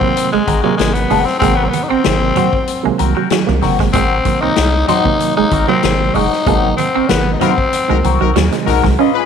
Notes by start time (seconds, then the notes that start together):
Already playing: C4
0.00 C3 D#3 F#3 A#3, muted clean electric guitar stroke, kick
0.16 muted clean electric guitar stroke, closed hi-hat
0.32 G#1 G#3, muted clean electric guitar stroke
0.47 G#1 C4 F#4 A#4, muted clean electric guitar stroke, kick, closed hi-hat, muted conga, high conga
0.63 C3 D#3 F#3 G#3 A#3 C4 F#4 A#4
0.77 G#1 G#3, muted clean electric guitar stroke, snare, closed hi-hat, high conga
0.94 B3, muted clean electric guitar stroke, closed hi-hat
1.10 F#1 G#3 C4 F#4 A#4, open hi-hat, muted conga, low conga
1.25 C4, muted clean electric guitar stroke, snare
1.39 G#1 C3 D#3 F#3 G#3 A#3 C4 F#4 A#4, kick, closed hi-hat, muted conga, low conga
1.56 B3
1.64 C4
1.69 B3
1.73 muted clean electric guitar stroke, closed hi-hat, high conga
1.83 D#4
1.89 G#1 C4 F#4 A#4
2.04 G#1 C3 D#3 F#3 G#3, snare, closed hi-hat
2.11 A#3
2.22 muted clean electric guitar stroke
2.35 F#3 C4 F#4 C5, closed hi-hat, high conga, low conga
2.53 muted clean electric guitar stroke, kick
2.67 muted clean electric guitar stroke, closed hi-hat
2.83 C2 C3 D#3 F#3 G#3 A#3, muted clean electric guitar stroke
2.98 C2 C4 F#4 A#4, muted clean electric guitar stroke, closed hi-hat, high conga
3.15 F#3 C4 F#4 A#4
3.30 F#3, muted clean electric guitar stroke, snare, closed hi-hat, muted conga, high conga
3.46 C2 C3 D#3 F#3 A#3, muted clean electric guitar stroke, snare
3.61 F#1 C4 F#4 A#4, snare, open hi-hat, muted conga, low conga
3.78 G1 G#3, muted clean electric guitar stroke, kick, snare
3.93 G#1 G#3 C4 F#4 A#4, kick, closed hi-hat, muted conga, low conga
4.25 C3 D#3 F#3 A#3, muted clean electric guitar stroke, kick, closed hi-hat, high conga
4.41 C2 C4 D#4 F#4 A#4
4.56 C2, snare, closed hi-hat, muted conga
4.73 muted clean electric guitar stroke
4.87 F#3 C4 D#4 F#4 C5, snare, closed hi-hat, muted conga, high conga, low conga
5.04 C3 D#3 F#3 A#3, muted clean electric guitar stroke, kick
5.19 muted clean electric guitar stroke, closed hi-hat, muted conga
5.37 G#1 G#3 D#4, muted clean electric guitar stroke
5.51 G#1 C4 F#4 A#4, muted clean electric guitar stroke, kick, closed hi-hat, high conga
5.67 C3 D#3 F#3 A#3 C4 F#4 A#4
5.83 G#1, snare, closed hi-hat, high conga
6.00 muted clean electric guitar stroke
6.14 F#1 G#3 C4 D#4 F#4 A#4, open hi-hat, low conga
6.32 muted clean electric guitar stroke, snare
6.46 G#1 C3 D#3 F#3 G#3 A#3 C4 F#4 A#4, kick, closed hi-hat, muted conga, low conga
6.77 C4, muted clean electric guitar stroke, closed hi-hat, muted conga, high conga
6.95 G#1 C4 F#4 A#4
7.08 G#1 C3 D#3 F#3 A#3 B3, snare, closed hi-hat
7.26 muted clean electric guitar stroke
7.34 D#4
7.40 F#3 C4 D#4 F#4 A#4 C5, closed hi-hat, muted conga, high conga, low conga
7.58 muted clean electric guitar stroke, kick
7.73 muted clean electric guitar stroke, closed hi-hat, muted conga
7.88 C2 C3 D#3 F#3 G#3 A#3 D#4 F#4 A#4, muted clean electric guitar stroke
8.04 C2 C4 F#4 A#4, muted clean electric guitar stroke, closed hi-hat, muted conga, high conga
8.21 B1 F#3 C4 D#4 F#4 A#4
8.36 D#2 F#3, muted clean electric guitar stroke, snare, closed hi-hat, high conga
8.52 C3 D#3 F#3 G#3, muted clean electric guitar stroke, snare, closed hi-hat
8.66 B1 C4 D#4 F#4 A#4, snare, open hi-hat, muted conga, low conga
8.84 C2 G#3, muted clean electric guitar stroke, kick, snare
8.99 C#4 F4 B4 D#5
9.14 F4 G#4 B4